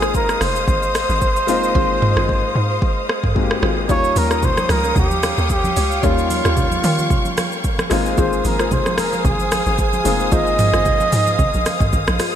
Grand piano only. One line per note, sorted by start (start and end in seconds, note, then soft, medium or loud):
0.00 1.43 G#3 medium
0.00 1.44 A#3 medium
0.00 1.44 C4 medium
0.00 1.44 D#4 medium
0.00 1.45 F4 medium
1.47 3.31 G#3 medium
1.47 3.32 A#3 medium
1.47 3.32 C4 medium
1.47 3.32 D#4 medium
1.47 3.33 F4 medium
3.35 3.89 G#3 medium
3.35 3.87 A#3 medium
3.35 3.89 C4 medium
3.35 3.88 D#4 medium
3.35 3.43 F#4 medium
3.43 3.93 G4 medium
3.88 5.99 G3 medium
3.88 5.99 A#3 medium
3.88 6.00 C#4 medium
3.88 6.00 D#4 medium
3.88 6.00 F4 medium
6.02 7.87 G3 medium
6.02 7.87 A#3 medium
6.02 7.87 C#4 medium
6.02 7.88 D#4 medium
6.02 7.88 F4 medium
7.90 10.01 G#3 medium
7.90 10.01 A#3 medium
7.90 10.01 C4 medium
7.90 10.02 D#4 medium
7.90 10.02 F4 medium
10.04 12.15 G#3 medium
10.04 12.15 A#3 medium
10.04 12.16 C4 medium
10.04 12.16 D#4 medium
10.04 12.16 F4 medium